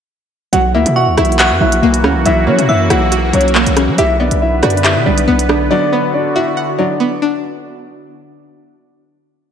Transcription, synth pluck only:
0.53 F#3
0.75 A#3
1.17 E4
1.39 F#4
1.61 F#3
1.83 A#3
2.04 C#4
2.26 F#3
2.47 A#3
2.90 E4
3.12 F#4
3.33 F#3
3.55 A#3
3.76 C#4
3.98 G4
4.20 B3
4.63 F#4
4.84 G4
5.06 G3
5.28 B3
5.49 D4
5.71 F#3
5.93 B3
6.36 F#4
6.57 F#5
6.79 F#3
7.00 B3
7.22 D4

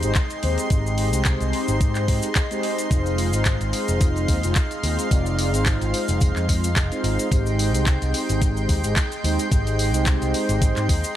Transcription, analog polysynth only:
0.03 G#3 C4 D#4 G4 C5
0.42 G#3 C4 D#4 G4 C5
0.70 G#3 C4 D#4 G4 D#5
1.12 G#3 C4 D#4 G4 C5
2.08 G#3 C4 D#4 G4 C5
2.50 G#3 C4 D#4 G4 C5
2.90 G#3 C4 D#4 F4 C5
3.33 G#3 C4 D#4 F4 C5
4.43 G#3 C4 D#4 F4 C5
4.83 G#3 C4 D#4 F4 C5
5.10 G#3 C4 D#4 F4 D5
5.52 G#3 C4 D#4 F4 C5
6.48 G#3 C4 D#4 F4 C5
6.91 G#3 C4 D#4 F4 C5
7.31 G#3 C4 D#4 G4 C5
7.73 G#3 C4 D#4 G4 C5
8.84 G#3 C4 D#4 G4 C5
9.23 G#3 C4 D#4 G4 C5
9.51 G#3 C4 D#4 G4 D#5
9.93 G#3 C4 D#4 G4 C5

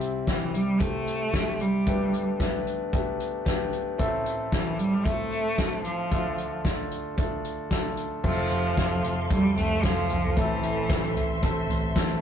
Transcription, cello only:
0.28 E3
0.54 G3
0.80 A3
1.61 G3
4.52 E3
4.78 G3
5.05 A3
5.84 F3
8.24 F3
9.30 G3
9.56 A3
9.83 F3
10.37 E3

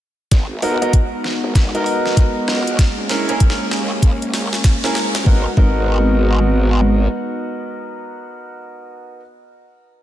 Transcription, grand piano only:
0.62 B3 D#4 F#4 A#4
0.82 B3 D#4 F#4 A#4
1.75 B3 D#4 F#4 A#4
3.10 C#4 E4 G#4 A#4
3.29 C#4 E4 G#4 A#4
4.84 C#4 E4 G#4 A#4
5.26 B3 D#4 F#4 A#4
5.57 B3 D#4 F#4 A#4

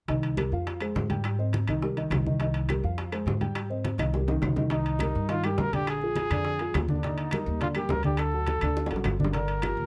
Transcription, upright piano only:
0.08 D#3 D#4 D#5
0.37 G3 G4 A#4
0.52 F3 F4 F5
0.81 G#3 G#4 C5
1.09 G3 G4 G5
1.39 C4 C5 D#5
1.68 D#3 D#4 D#5
1.83 G3 G4 A#4
1.97 D#3 D#4 D#5
2.26 D#3 D#4 D#5
2.41 D#3 D#4 D#5
2.69 G3 G4 A#4
2.84 F3 F4 F5
3.12 G#3 G#4 C5
3.41 G3 G4 G5
3.70 C4 C5 D#5
3.98 D#3 D#4 D#5
4.14 G3 G4 A#4
4.28 D#3 D#4 D#5
4.57 D#3 D#4 D#5
4.71 D#3 D#4 D#5
5.01 G3 G4 A#4
5.29 D#3 D#4 D#5
5.45 G3 G4 A#4
5.74 D3 D4 D5
6.03 F3 F4 G#4
6.31 D3 D4 D5
6.60 F3 F4 G#4
6.89 D3 D4 D5
7.04 D3 D4 D5
7.33 G3 G4 A#4
7.61 D3 D4 D5
7.76 G3 G4 A#4
8.04 D3 D4 D5
8.34 F#3 F#4 A4
8.63 D3 D4 D5
8.91 F#3 F#4 A4
9.19 D3 D4 D5
9.34 D3 D4 D5
9.62 F3 F4 G4

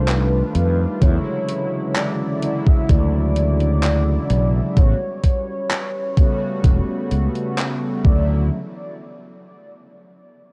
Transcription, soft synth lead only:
Already playing: C5
0.09 B4
1.02 C#5
1.96 D5
2.68 E5
2.90 D5
4.78 C#5
8.05 D5

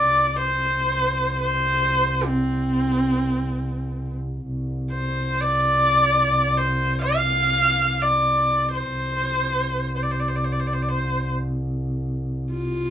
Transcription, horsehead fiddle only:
Already playing: D5
0.36 C5
1.41 C5
2.26 C4
4.91 C5
5.41 D5
6.57 C5
7.02 F5
8.02 D5
8.72 C5
9.96 C5
10.03 D5
10.11 C5
10.20 D5
10.28 C5
10.36 D5
10.44 C5
10.52 D5
10.60 C5
10.67 D5
10.73 C5
10.82 D5
10.89 C5
12.51 F4

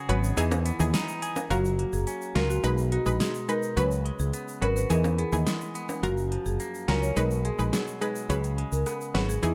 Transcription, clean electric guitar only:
Already playing: C#3 F#4 G#4
0.09 B3
0.37 E3
0.66 B3
0.94 D#4
1.22 G#4
1.51 F#3
1.79 A#3
2.07 C#4
2.35 F4
2.64 B2
2.92 D#4
3.20 G#3
3.49 D#4
3.77 C#3
4.05 G#3
4.34 B3
4.62 F#4
4.90 E3
5.18 B3
5.47 G#3
5.75 B3
6.03 F#2
6.32 F3
6.60 A#3
6.88 C#4
7.17 B2
7.45 G#3
7.73 F#3
8.02 G#3
8.30 C#3
8.58 G#3
8.86 B3
9.15 F#4
9.43 E3

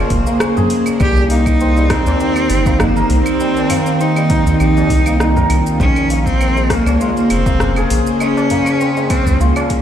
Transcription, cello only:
Already playing: A#3
1.01 G4
1.31 D#4
1.91 C4
2.81 A#3
3.21 C4
4.01 D#4
4.61 D#4
5.81 C#4
6.26 C4
6.70 A#3
7.01 G#3
7.16 A#3
7.30 C4
8.21 C#4
9.10 C4
9.40 A#3

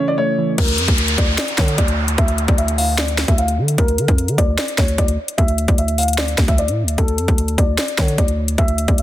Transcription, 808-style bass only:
0.58 D2
0.78 F2
0.88 D2
1.18 D2
1.58 D3
1.78 D2
2.18 D2
2.48 D2
3.28 D2
3.58 D3
3.78 D2
3.98 D3
4.08 F2
4.28 D3
4.38 D2
4.78 D2
4.98 D2
5.38 D2
5.68 D2
6.38 D2
6.68 A2
6.83 D2
6.98 D2
7.18 F2
7.28 D2
7.58 D2
7.98 D3
8.18 D2
8.58 D2
8.88 D2

